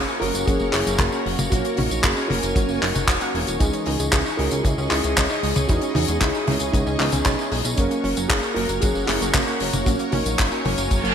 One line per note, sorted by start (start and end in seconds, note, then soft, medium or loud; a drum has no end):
0.00 0.18 A#3 medium
0.00 0.18 C#4 medium
0.00 0.18 F#4 medium
0.00 0.18 A#4 medium
0.00 3.57 A#4 medium
0.00 3.57 C#5 medium
0.00 1.50 F#5 medium
0.00 11.14 C#6 medium
0.08 0.21 C#4 medium
0.08 tambourine soft
0.20 0.32 F#1 loud
0.20 0.31 F#3 medium
0.20 0.71 A#3 medium
0.20 0.71 C#4 medium
0.20 0.71 F#4 medium
0.20 0.46 F#4 medium
0.20 0.47 A#4 loud
0.20 0.71 A#4 loud
0.20 open hi-hat loud
0.34 0.45 F#1 medium
0.34 0.40 A#3 medium
0.34 closed hi-hat medium
0.34 tambourine medium
0.46 0.58 F#1 loud
0.46 0.58 F#3 medium
0.46 0.72 C#4 medium
0.46 0.70 G#4 loud
0.46 kick loud
0.46 closed hi-hat medium
0.46 tambourine soft
0.60 0.71 F#1 medium
0.60 0.73 A#3 medium
0.60 tambourine soft
0.72 0.84 F#1 loud
0.72 1.10 A#3 loud
0.72 1.10 C#4 medium
0.72 0.80 C#4 loud
0.72 1.48 E4 medium
0.72 1.10 F#4 medium
0.72 1.53 G#4 loud
0.72 1.10 A#4 loud
0.72 clap medium
0.72 open hi-hat loud
0.87 0.97 F#1 medium
0.87 0.97 F#3 medium
0.87 closed hi-hat medium
0.87 tambourine medium
0.99 1.09 F#1 loud
0.99 1.10 A#3 loud
0.99 kick loud
0.99 clap loud
0.99 closed hi-hat medium
0.99 high tom medium
0.99 tambourine soft
1.12 1.49 A#3 medium
1.12 1.49 C#4 medium
1.12 1.25 C#4 medium
1.12 1.49 F#4 medium
1.12 1.49 A#4 medium
1.12 tambourine soft
1.26 1.36 F#1 medium
1.26 1.36 F#3 medium
1.26 open hi-hat loud
1.39 1.49 F#1 medium
1.39 1.45 A#3 medium
1.39 closed hi-hat medium
1.39 high tom medium
1.39 tambourine medium
1.50 1.62 A#1 loud
1.50 1.62 F#3 medium
1.50 2.27 A#3 medium
1.50 2.27 C#4 medium
1.50 1.77 C#4 medium
1.50 1.75 F#4 loud
1.50 2.27 F#4 medium
1.50 2.27 A#4 medium
1.50 3.58 G#5 medium
1.50 kick loud
1.50 closed hi-hat medium
1.50 tambourine medium
1.65 1.77 A#3 medium
1.65 closed hi-hat medium
1.65 tambourine soft
1.76 1.88 A#1 loud
1.76 1.84 C#4 loud
1.76 2.03 D#4 medium
1.76 2.04 F#4 loud
1.76 open hi-hat loud
1.76 high tom medium
1.91 2.01 A#1 medium
1.91 2.01 F#3 medium
1.91 closed hi-hat medium
1.91 tambourine medium
2.02 2.14 F#1 loud
2.02 2.14 A#3 loud
2.02 2.29 C#4 medium
2.02 2.30 G#4 loud
2.02 kick loud
2.02 clap loud
2.02 closed hi-hat medium
2.02 tambourine soft
2.17 2.29 C#4 medium
2.17 tambourine soft
2.28 2.40 F#1 medium
2.28 2.40 F#3 medium
2.28 2.80 A#3 medium
2.28 2.80 C#4 medium
2.28 2.80 F#4 medium
2.28 2.53 F#4 medium
2.28 2.56 A#4 loud
2.28 2.80 A#4 loud
2.28 open hi-hat loud
2.28 high tom medium
2.43 2.53 F#1 medium
2.43 2.49 A#3 medium
2.43 closed hi-hat medium
2.43 tambourine medium
2.54 2.66 F#1 loud
2.54 2.66 F#3 medium
2.54 2.81 C#4 medium
2.54 2.79 F#4 loud
2.54 kick loud
2.54 closed hi-hat medium
2.54 tambourine medium
2.69 2.80 F#1 medium
2.69 2.82 A#3 medium
2.69 tambourine soft
2.81 2.93 F#1 medium
2.81 2.88 F#3 medium
2.81 3.31 D#4 medium
2.81 3.30 F#4 medium
2.81 clap medium
2.81 open hi-hat loud
2.95 3.06 F#1 medium
2.95 3.05 F#4 loud
2.95 closed hi-hat medium
2.95 high tom medium
2.95 tambourine medium
3.08 3.18 E1 loud
3.08 3.20 F#5 medium
3.08 kick loud
3.08 clap loud
3.08 closed hi-hat medium
3.08 tambourine medium
3.21 3.57 A#3 medium
3.21 3.57 C#4 medium
3.21 3.57 F#4 medium
3.21 3.57 A#4 medium
3.21 3.31 F#5 loud
3.21 closed hi-hat medium
3.21 tambourine soft
3.34 3.45 E1 medium
3.34 3.44 A#3 medium
3.34 open hi-hat loud
3.47 3.58 E1 medium
3.47 3.60 F#4 medium
3.47 closed hi-hat medium
3.47 tambourine medium
3.59 3.71 C#2 loud
3.59 4.36 E3 medium
3.59 3.71 G#3 medium
3.59 4.09 G#3 medium
3.59 4.36 C#4 medium
3.59 4.08 D#4 medium
3.59 4.36 D#4 medium
3.59 4.36 G#4 medium
3.59 7.74 G#4 medium
3.59 7.74 D#5 medium
3.59 kick loud
3.59 closed hi-hat medium
3.59 tambourine medium
3.73 3.86 C#4 medium
3.73 closed hi-hat medium
3.73 tambourine soft
3.86 3.97 C#2 loud
3.86 3.93 D#4 loud
3.86 open hi-hat loud
4.00 4.10 C#2 medium
4.00 4.10 G#3 medium
4.00 closed hi-hat medium
4.00 tambourine medium
4.11 4.23 C#2 loud
4.11 4.23 C#4 loud
4.11 4.19 E4 medium
4.11 4.17 G#4 loud
4.11 kick loud
4.11 clap loud
4.11 closed hi-hat medium
4.11 tambourine soft
4.26 4.38 D#4 medium
4.26 tambourine soft
4.37 4.49 C#2 medium
4.37 4.49 G#3 medium
4.37 4.88 C#4 medium
4.37 4.88 D#4 medium
4.37 4.88 E4 medium
4.37 4.63 F#4 medium
4.37 4.88 G#4 loud
4.37 4.62 A#4 loud
4.37 open hi-hat loud
4.51 4.62 C#2 medium
4.51 4.58 C#4 medium
4.51 closed hi-hat medium
4.51 tambourine medium
4.63 4.75 C#2 loud
4.63 4.75 G#3 medium
4.63 4.71 E4 medium
4.63 4.69 G#4 loud
4.63 kick loud
4.63 closed hi-hat medium
4.63 tambourine medium
4.78 4.88 C#2 medium
4.78 4.90 C#4 medium
4.78 tambourine soft
4.89 5.01 C#2 medium
4.89 5.27 C#4 loud
4.89 4.97 D#4 loud
4.89 5.27 E4 medium
4.89 5.66 E4 medium
4.89 5.71 G#4 loud
4.89 5.27 G#4 loud
4.89 5.27 D#5 medium
4.89 clap medium
4.89 open hi-hat loud
5.04 5.14 C#2 medium
5.04 5.14 G#3 medium
5.04 closed hi-hat medium
5.04 tambourine medium
5.16 5.27 C#2 loud
5.16 5.27 C#4 loud
5.16 kick loud
5.16 clap loud
5.16 closed hi-hat medium
5.16 high tom medium
5.16 tambourine soft
5.30 5.66 C#4 medium
5.30 5.42 D#4 medium
5.30 5.66 E4 medium
5.30 5.66 G#4 medium
5.30 5.66 D#5 medium
5.30 tambourine soft
5.43 5.53 C#2 medium
5.43 5.53 G#3 medium
5.43 open hi-hat loud
5.56 5.66 C#2 medium
5.56 5.62 C#4 medium
5.56 closed hi-hat medium
5.56 high tom medium
5.56 tambourine medium
5.68 5.80 E2 loud
5.68 5.79 G#3 medium
5.68 6.44 C#4 medium
5.68 6.44 D#4 medium
5.68 5.94 D#4 medium
5.68 6.44 E4 medium
5.68 5.92 F#4 loud
5.68 6.44 G#4 medium
5.68 kick loud
5.68 closed hi-hat medium
5.68 tambourine medium
5.81 5.95 C#4 medium
5.81 closed hi-hat medium
5.81 tambourine soft
5.94 6.06 E2 medium
5.94 6.01 D#4 loud
5.94 6.20 D#4 medium
5.94 6.21 F#4 medium
5.94 open hi-hat loud
5.94 high tom medium
6.08 6.19 E2 medium
6.08 6.18 G#3 medium
6.08 closed hi-hat medium
6.08 tambourine medium
6.20 6.32 C#2 loud
6.20 6.31 C#4 loud
6.20 6.44 E4 medium
6.20 6.48 G#4 loud
6.20 kick loud
6.20 clap loud
6.20 closed hi-hat medium
6.20 tambourine medium
6.34 6.47 D#4 medium
6.34 tambourine soft
6.46 6.58 C#2 medium
6.46 6.57 G#3 medium
6.46 6.97 C#4 medium
6.46 6.54 C#4 medium
6.46 6.97 D#4 medium
6.46 6.52 E4 medium
6.46 6.97 E4 medium
6.46 6.97 G#4 loud
6.46 open hi-hat loud
6.46 high tom medium
6.60 6.71 C#2 medium
6.60 6.66 C#4 medium
6.60 closed hi-hat medium
6.60 tambourine medium
6.72 6.84 C#2 loud
6.72 6.83 G#3 medium
6.72 6.98 G#3 medium
6.72 6.97 D#4 medium
6.72 kick loud
6.72 closed hi-hat medium
6.72 tambourine medium
6.86 6.97 C#2 medium
6.86 6.99 C#4 medium
6.86 tambourine soft
6.98 7.10 C#2 medium
6.98 7.36 E3 medium
6.98 7.49 B3 medium
6.98 7.36 C#4 loud
6.98 7.47 D#4 medium
6.98 7.06 D#4 loud
6.98 7.36 D#4 medium
6.98 7.36 G#4 loud
6.98 clap medium
6.98 open hi-hat loud
7.12 7.23 C#2 medium
7.12 7.23 G#3 medium
7.12 closed hi-hat medium
7.12 high tom medium
7.12 tambourine medium
7.25 7.36 B1 loud
7.25 7.36 C#4 loud
7.25 kick loud
7.25 clap loud
7.25 closed hi-hat medium
7.25 tambourine soft
7.39 7.75 C#4 medium
7.39 7.51 D#4 medium
7.39 7.75 D#4 medium
7.39 7.75 E4 medium
7.39 7.75 G#4 loud
7.39 tambourine soft
7.52 7.62 B1 medium
7.52 7.62 G#3 medium
7.52 open hi-hat loud
7.64 7.75 B1 medium
7.64 7.71 C#4 medium
7.64 closed hi-hat medium
7.64 tambourine medium
7.76 7.88 F#1 loud
7.76 7.88 F#3 medium
7.76 8.53 A#3 medium
7.76 8.27 A#3 medium
7.76 8.29 C#4 loud
7.76 8.53 C#4 medium
7.76 8.53 F#4 medium
7.76 8.53 A#4 medium
7.76 11.14 A#4 medium
7.76 11.14 C#5 medium
7.76 9.85 F#5 medium
7.76 kick loud
7.76 closed hi-hat medium
7.76 tambourine medium
7.91 8.03 A#3 medium
7.91 closed hi-hat medium
7.91 tambourine soft
8.04 8.14 F#1 medium
8.04 8.10 C#4 loud
8.04 open hi-hat loud
8.17 8.27 F#1 medium
8.17 8.27 F#3 medium
8.17 closed hi-hat medium
8.17 tambourine medium
8.28 8.40 F#1 loud
8.28 8.40 A#3 loud
8.28 8.55 C#4 medium
8.28 8.56 G#4 loud
8.28 kick loud
8.28 clap loud
8.28 closed hi-hat medium
8.28 tambourine soft
8.43 8.56 C#4 medium
8.43 tambourine soft
8.54 8.66 F#1 loud
8.54 8.66 F#3 medium
8.54 9.06 A#3 medium
8.54 9.06 C#4 medium
8.54 9.06 F#4 medium
8.54 8.81 F#4 medium
8.54 8.79 A#4 loud
8.54 9.06 A#4 loud
8.54 open hi-hat loud
8.69 8.79 F#1 medium
8.69 8.75 A#3 medium
8.69 closed hi-hat medium
8.69 tambourine medium
8.80 8.93 F#1 loud
8.80 8.92 F#3 medium
8.80 9.07 C#4 medium
8.80 9.05 G#4 loud
8.80 kick loud
8.80 closed hi-hat loud
8.80 tambourine medium
8.95 9.06 F#1 medium
8.95 9.08 A#3 medium
8.95 tambourine soft
9.07 9.19 F#1 medium
9.07 9.44 A#3 loud
9.07 9.14 C#4 loud
9.07 9.44 C#4 medium
9.07 9.83 E4 medium
9.07 9.44 F#4 medium
9.07 9.88 G#4 loud
9.07 9.44 A#4 loud
9.07 clap medium
9.07 open hi-hat loud
9.21 9.32 F#1 medium
9.21 9.31 F#3 medium
9.21 closed hi-hat medium
9.21 tambourine medium
9.34 9.45 F#1 loud
9.34 9.44 A#3 loud
9.34 kick loud
9.34 clap loud
9.34 closed hi-hat medium
9.34 high tom medium
9.34 tambourine medium
9.47 9.83 A#3 medium
9.47 9.60 C#4 medium
9.47 9.83 C#4 medium
9.47 9.83 F#4 medium
9.47 9.83 A#4 medium
9.47 tambourine soft
9.60 9.71 F#1 medium
9.60 9.71 F#3 medium
9.60 open hi-hat loud
9.73 9.84 F#1 medium
9.73 9.80 A#3 medium
9.73 closed hi-hat medium
9.73 high tom medium
9.73 tambourine medium
9.85 9.97 A#1 medium
9.85 9.97 F#3 medium
9.85 10.62 A#3 medium
9.85 10.62 C#4 medium
9.85 10.11 C#4 medium
9.85 10.09 F#4 loud
9.85 10.62 F#4 medium
9.85 10.62 A#4 medium
9.85 11.14 G#5 medium
9.85 kick loud
9.85 closed hi-hat medium
9.85 tambourine medium
9.99 10.12 A#3 medium
9.99 closed hi-hat medium
9.99 tambourine soft
10.11 10.23 A#1 medium
10.11 10.19 C#4 loud
10.11 10.62 D#4 medium
10.11 10.60 F#4 medium
10.11 open hi-hat loud
10.11 high tom medium
10.26 10.36 A#1 medium
10.26 10.36 F#3 medium
10.26 closed hi-hat medium
10.26 tambourine medium
10.39 10.49 F#1 loud
10.39 10.49 A#3 loud
10.39 kick loud
10.39 clap loud
10.39 closed hi-hat medium
10.39 tambourine soft
10.52 10.64 C#4 medium
10.52 tambourine soft
10.65 10.75 F#1 loud
10.65 10.75 F#3 medium
10.65 11.14 A#3 medium
10.65 11.14 C#4 medium
10.65 11.14 F#4 medium
10.65 11.14 A#4 loud
10.65 open hi-hat loud
10.65 high tom medium
10.78 10.88 F#1 medium
10.78 10.84 A#3 medium
10.78 closed hi-hat medium
10.78 tambourine medium
10.91 11.01 F#1 loud
10.91 11.01 F#3 medium
10.91 kick loud
10.91 closed hi-hat medium
10.91 tambourine soft
10.91 reverse cymbal medium
11.04 11.14 F#1 medium
11.04 11.14 A#3 medium
11.04 closed hi-hat medium
11.04 tambourine soft